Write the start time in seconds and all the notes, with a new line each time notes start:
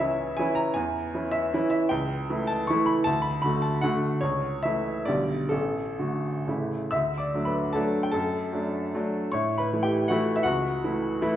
Already playing: C#2 C#5 E5
0.00 E3 C#4 E4
0.37 E3 C#4 E4 G#5
0.55 A#5
0.74 E2 G#5
1.14 E3 C#4 E4
1.31 E5
1.54 E3 C#4 E4
1.70 E5
1.89 C#2 G5
2.29 E3 A3 E4
2.47 A5
2.67 E3 A3 E4 C#6
2.86 B5
3.04 D2 A5
3.22 B5
3.42 D3 A3 F#4 B5
3.62 A5
3.81 D3 A3 F#4 F#5
4.21 C#2 C#5
4.63 E3 A3 E4 E5
5.05 B1 D3 G3 G4 D5
5.49 A1 A4
5.99 D3 A3 F#4
6.47 A1 C#3 A3 E4
6.91 D2 E5 E6
7.18 D5 D6
7.34 F#3 A3 D4
7.45 B4 B5
7.73 F#3 A3 D4 A4 A5
8.03 G5
8.12 F#2 A4 A5
8.52 F#3 A3 D4
8.95 F#3 A3 D4
9.32 A2 C#5 C#6
9.58 B4 B5
9.73 E3 A3 E4
9.83 G4 G5
10.08 E3 A3 E4 F#4 F#5
10.36 E5
10.43 C#2 F#4 F#5
10.84 E3 A3 E4
11.22 E3 A3 E4